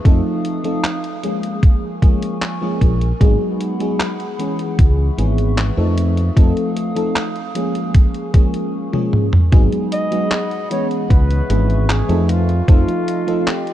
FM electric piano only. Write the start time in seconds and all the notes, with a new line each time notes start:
0.04 F3 A3 C4 D#4 A4
0.64 F3 A3 C4 D#4 A4
1.23 F3 G#3 A#3 C#4 G#4
2.02 F3 G#3 A#3 C#4 G#4
2.61 F3 G#3 A#3 C#4 G#4
3.20 F#3 G#3 B3 D#4 G#4
3.79 F#3 G#3 B3 D#4 G#4
4.38 E3 G#3 B3 C#4 G#4
5.17 E3 G#3 B3 C#4 G#4
5.77 F3 A3 C4 D#4 A4
6.36 F3 A3 C4 D#4 A4
6.95 F3 A3 C4 D#4 A4
7.54 F3 G#3 A#3 C#4 G#4
8.33 F3 G#3 A#3 C#4 G#4
8.92 F3 G#3 A#3 C#4 G#4
9.52 F#3 G#3 B3 D#4 G#4
10.11 F#3 G#3 B3 D#4 G#4
10.70 E3 G#3 B3 C#4 G#4
11.49 E3 G#3 B3 C#4 G#4
12.09 F3 A3 C4 D#4 A4
12.68 F3 A3 C4 D#4 A4
13.27 F3 A3 C4 D#4 A4